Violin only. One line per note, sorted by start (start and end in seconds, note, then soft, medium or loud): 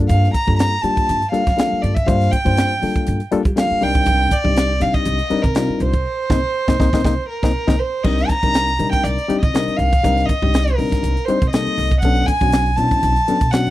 0.09 0.32 F5 medium
0.34 0.57 A#5 medium
0.58 0.83 A#5 medium
0.82 1.31 A5 medium
1.32 1.83 F5 medium
1.82 1.96 D5 medium
1.95 2.07 E5 medium
2.06 2.33 F5 medium
2.31 3.07 G5 medium
3.58 3.85 F5 loud
3.83 4.34 G5 loud
4.32 4.83 D5 loud
4.82 4.96 F5 medium
4.94 5.44 D#5 medium
5.43 5.83 A#4 medium
5.81 7.29 C5 medium
7.29 7.81 A#4 medium
7.79 8.05 C5 medium
8.04 8.30 D#5 medium
8.28 8.91 A#5 loud
8.92 9.05 G5 medium
9.04 9.41 D5 medium
9.42 9.79 D#5 medium
9.77 10.27 F5 loud
10.26 10.77 D#5 loud
10.75 11.27 A#4 medium
11.25 11.50 C5 medium
11.50 11.98 D#5 loud
12.01 12.28 F#5 medium
12.26 12.78 G#5 loud
12.77 13.53 A5 medium
13.51 13.70 F#5 medium